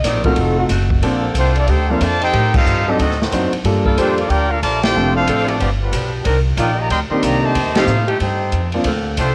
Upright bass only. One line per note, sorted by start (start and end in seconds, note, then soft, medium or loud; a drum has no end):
0.04 0.36 A#1 loud
0.36 0.69 F1 loud
0.69 1.01 F#1 loud
1.02 1.34 A#1 medium
1.34 1.67 C2 loud
1.68 2.00 D2 loud
2.01 2.32 F2 medium
2.34 2.65 A2 medium
2.66 2.98 G2 medium
2.99 3.31 D2 loud
3.32 3.51 F#2 loud
3.52 muted upright bass stroke soft
3.64 3.96 G2 loud
3.97 4.29 F2 medium
4.30 4.61 D2 loud
4.63 4.94 A#1 medium
4.95 5.26 F1 medium
5.27 5.59 A1 medium
5.60 5.91 G1 loud
5.92 6.24 B1 loud
6.26 6.56 C2 loud
6.57 6.89 A#1 loud
6.90 7.09 D2 medium
7.10 muted upright bass stroke soft
7.23 7.54 C2 medium
7.55 7.65 F2 medium
7.65 7.76 D#2 medium
7.76 7.86 C2 medium
7.87 8.19 A2 medium
8.20 8.52 G2 loud
8.52 8.84 F2 loud
8.85 9.16 D2 loud
9.18 9.35 C2 loud